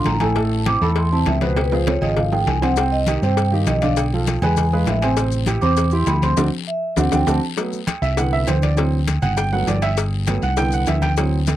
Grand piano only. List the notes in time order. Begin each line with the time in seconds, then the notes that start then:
Already playing: D3 D4 F4
0.21 A2 A3 A4
0.36 A2 A3 A4
0.66 C3 C4 E4
0.82 A2 A3 A4
1.12 C3 C4 E4
1.41 B2 B3 B4
1.72 F3 F4 G#4
2.02 F3 F4 G#4
2.32 F3 F4 G#4
2.62 C3 C4 C5
2.76 C3 C4 C5
3.07 D#3 D#4 G4
3.23 C3 C4 C5
3.52 D#3 D#4 G4
3.83 D3 D4 D5
4.13 F3 F4 A4
4.43 G#3 G#4 B4
4.73 G#3 G#4 B4
5.03 C3 C4 C5
5.17 C3 C4 C5
5.47 E3 E4 G4
5.62 C3 C4 C5
5.92 E3 E4 G4
6.22 C3 C4 C5
6.37 C4 D4 F#4
6.97 C4 D4 F#4
7.12 C4 D4 F#4
7.27 C4 D4 F#4
7.57 F#3 A3 B3
8.02 E5
8.17 D3 E3 B3 F#5
8.33 E5
8.47 C5
8.63 D5
8.76 E3 F#3 C4
9.22 F#5
9.37 G5
9.52 F#3 A3 B3 F#5
9.68 D5
9.83 E5
10.27 F#3 A3 B3
10.43 F#5
10.57 D3 E3 B3 G5
10.73 F#5
10.88 E5
11.02 G5
11.18 E3 F#3 C4